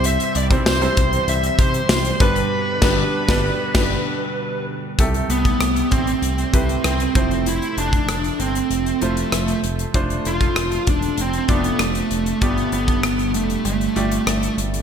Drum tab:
CC |----------------|--x-----x-------|----------------|----------------|
HH |xxxx-xxxxxxx-xxx|----------------|xxxxxxxxxxxxxxxx|xxxxxxxxxxxxxxxx|
TB |----x-------x---|----------------|----------------|----------------|
SD |----o-------o---|--o--o--o-------|----r-------r---|----r-------r---|
BD |---o--o---o---o-|--o--o--o-------|o--o--o---o---o-|---o------------|

CC |----------------|----------------|
HH |xxxxxxxxxxxxxxxx|xxxxxxxxxxxxxxxx|
TB |----------------|----------------|
SD |----r-------r---|----r-------r---|
BD |o--o--o---o-----|o--o------------|